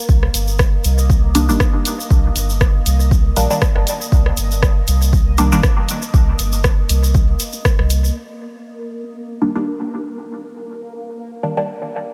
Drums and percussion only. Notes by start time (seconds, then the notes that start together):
0.09 kick, shaker
0.23 cross-stick
0.34 closed hi-hat, shaker
0.48 shaker
0.59 kick, cross-stick, shaker
0.84 closed hi-hat, shaker
0.98 shaker
1.10 kick, shaker
1.35 closed hi-hat, shaker
1.49 shaker
1.60 kick, cross-stick, shaker
1.85 closed hi-hat, shaker
2.00 shaker
2.10 kick, shaker
2.36 closed hi-hat, shaker
2.50 shaker
2.60 kick, cross-stick, shaker
2.86 closed hi-hat, shaker
3.00 shaker
3.11 kick, shaker
3.36 closed hi-hat, shaker
3.50 shaker
3.61 kick, cross-stick, shaker
3.76 cross-stick
3.87 closed hi-hat, shaker
4.01 shaker
4.12 kick, shaker
4.26 cross-stick
4.37 closed hi-hat, shaker
4.51 shaker
4.63 kick, cross-stick, shaker
4.88 closed hi-hat, shaker
5.02 shaker
5.13 kick, shaker
5.38 closed hi-hat, shaker
5.52 shaker
5.63 kick, cross-stick, shaker
5.89 closed hi-hat, shaker
6.02 shaker
6.14 kick, shaker
6.39 closed hi-hat, shaker
6.52 shaker
6.64 kick, cross-stick, shaker
6.89 closed hi-hat, shaker
7.04 shaker
7.14 kick, shaker
7.40 closed hi-hat, shaker
7.52 shaker
7.65 kick, cross-stick, shaker
7.79 cross-stick
7.90 closed hi-hat, shaker
8.04 shaker